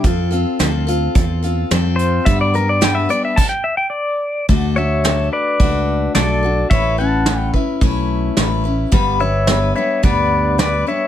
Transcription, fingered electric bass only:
X:1
M:4/4
L:1/8
Q:1/4=108
K:Gmix
V:1 name="Fingered electric bass" clef=bass
F,,2 D,,2 E,,2 F,,2 | G,,4 z4 | [K:D] D,,4 C,,2 B,,,2 | A,,,4 B,,,2 A,,,2 |
G,,,4 D,,4 |]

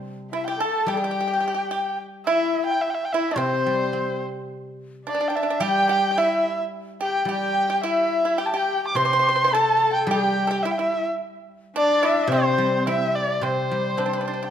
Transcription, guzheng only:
X:1
M:2/4
L:1/8
Q:1/4=108
K:none
V:1 name="Guzheng" clef=bass
[C,G,C]2 z G,- | G,4- | G, z3 | C, G, C2- |
C2 z2 | G,4- | G,2 G,2- | G,4 |
C,4 | G,4- | G,2 z2 | C, G, C2 |
C, G, C2 |]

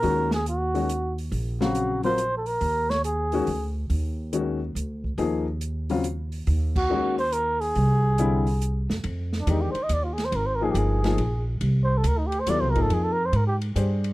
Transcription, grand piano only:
X:1
M:3/4
L:1/8
Q:"Swing" 1/4=140
K:Ebdor
V:1 name="Grand piano"
[E,A,DG] z2 [E,A,DG] z2 | z [D,G,Cf]2 [G,CFB] z2 | z3 [E,A,DG] z2 | z2 [E,A,DG] z3 |
[F,B,EA] z2 [D,G,CF] z2 | z2 [E,A,DG] z3 | z2 [=D,=G,C=E] z3 | [K:Fdor] z2 [E,A,DG] z3 |
z [F,B,EA]2 [F,B,EA] z2 | z4 [_G,=B,=E=A] [F,_B,_E_A]- | [F,B,EA] z3 [DGAc]2 |]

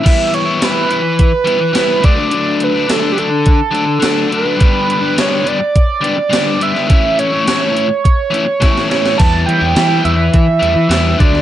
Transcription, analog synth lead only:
X:1
M:4/4
L:1/16
Q:1/4=105
K:Edor
V:1 name="Analog synth lead"
e2 c2 B2 B8 d2- | d2 B2 A3/2 G/2 A6 A2 B2- | B2 B2 c2 d8 e2- | e2 c6 c6 c2 |
a2 g2 g2 e2 e6 d2 |]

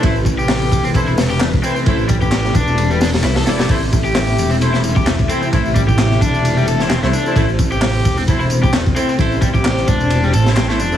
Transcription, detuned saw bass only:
X:1
M:4/4
L:1/16
Q:"Swing 16ths" 1/4=131
K:Am
V:1 name="Detuned saw bass" clef=bass
A,,,6 E,,,8 z2 | A,,,6 E,,,6 C,,2 E,,,2 | A,,,6 E,,,8 z2 | A,,,6 E,,,4 E,,,3 C,, z2 |
A,,,6 E,,,8 z2 | A,,,6 E,,,4 A,,,4 E,,,2 |]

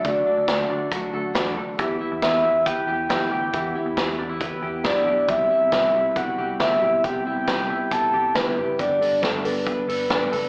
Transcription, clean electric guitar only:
X:1
M:4/4
L:1/16
Q:1/4=137
K:Em
V:1 name="Clean electric guitar"
[D,F,A,DA]2 D2 A,2 D2 F,2 A2 D2 A2 | E,2 E2 B,2 E2 B,2 G2 E2 G2 | E,2 E2 B,2 D E B,2 G2 D E G2 | C,2 E2 B,2 E2 G,2 G2 E2 G2 |
C,2 E2 B,2 E2 G,2 G2 E2 G2 | G,2 D2 B,2 D2 B,2 A2 D2 A2 |]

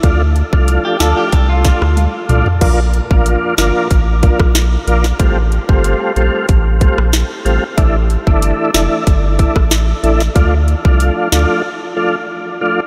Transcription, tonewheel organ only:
X:1
M:4/4
L:1/16
Q:1/4=93
K:Dm
V:1 name="Tonewheel organ"
[F,A,DF] z2 [F,A,DF]3 [F,A,DF]2 z2 [F,A,DF] z3 [F,A,DF] z | [F,B,DF] z2 [F,B,DF]3 [F,B,DF]2 z2 [F,B,DF] z3 [F,B,DF] z | [G,A,CF] z2 [G,A,CF]3 [G,A,CF]2 z2 [G,A,CF] z3 [G,A,CF] z | [E,A,DE] z2 [E,A,DE]3 [E,A,DE]2 z2 [E,A,DE] z3 [E,A,DE] z |
[F,A,DF] z2 [F,A,DF]3 [F,A,DF]2 z2 [F,A,DF] z3 [F,A,DF] z |]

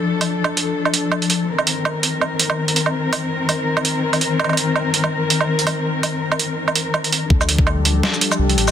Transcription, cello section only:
X:1
M:4/4
L:1/8
Q:"Swing 16ths" 1/4=165
K:Cdor
V:1 name="Cello section"
[F,DA]8 | [E,CB]8- | [E,CB]8- | [E,CB]8- |
[E,CB]8 | [F,DA]8 |]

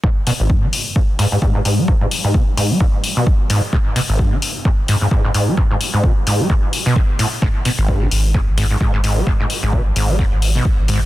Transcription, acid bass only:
X:1
M:4/4
L:1/16
Q:"Swing 16ths" 1/4=130
K:G#phr
V:1 name="Acid bass" clef=bass
G,, z B,, G,,, G,, D, z2 G,, z G,, G,, G,, G,, G,, G, | G,, G,, z G,, B,, z G,, G, G,, z2 B,, z2 G,, z | G,, z B,, G,,, G,, D, z2 G,, z G,, G,, G,, G,, G,, G, | G,, G,, z G,, B,, z G,, G, G,, z2 B,, A,, z A,, z |
G,, z B,, G,,, G,, D, z2 G,, z G,, G,, G,, G,, G,, G, | G,, G,, z G,, B,, z G,, G, G,, z2 B,, z2 G,, z |]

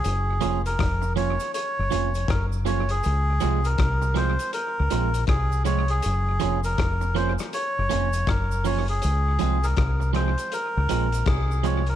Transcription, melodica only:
X:1
M:4/4
L:1/16
Q:"Swing 16ths" 1/4=80
K:Db
V:1 name="Melodica"
A3 B3 d2 d4 B2 d A- | A3 B3 c2 B4 A2 d A- | A3 B3 c2 d4 B2 d A- | A3 B3 c2 B4 A2 d B |]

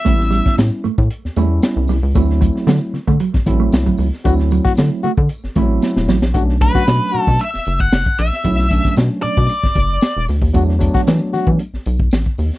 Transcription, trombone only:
X:1
M:4/4
L:1/16
Q:1/4=114
K:Bm
V:1 name="Trombone"
z16 | z16 | F z2 F z2 F z8 z | F z2 F z2 F2 z8 |
z16 | F z2 F z2 F2 z8 |]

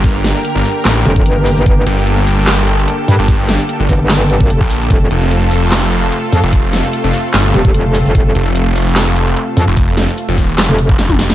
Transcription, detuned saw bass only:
X:1
M:4/4
L:1/16
Q:"Swing 16ths" 1/4=148
K:Fmix
V:1 name="Detuned saw bass" clef=bass
G,,,3 z2 G,,, z2 A,,,2 z6 | z2 G,,,4 G,,,6 z3 G,,,- | G,,,3 z2 G,,, z6 z B,,,3 | z2 F,,,4 F,,,6 z3 F,,,- |
F,,,3 z2 F,,, z2 G,,,2 z6 | z2 F,,,4 F,,,6 z3 F,,,- | F,,,3 z2 F,,, E,,,2 F,,, z2 F,,,4 E,,, |]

